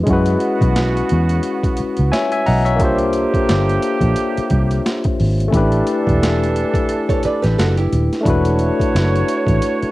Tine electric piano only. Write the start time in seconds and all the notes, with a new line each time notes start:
0.03 G#3 C#4
0.08 E4 F#4
0.13 B4
2.12 C#5 E5 G#5
2.32 E5 G#5
2.46 D#5 F#5 A#5
2.65 C#5 E5
2.76 A#3 D4
2.81 F4 G4
2.85 C5
5.48 A3 C#4
5.53 E4 G4
5.57 D4 B4
8.21 A3 D4
8.25 E4 F#4
8.30 B4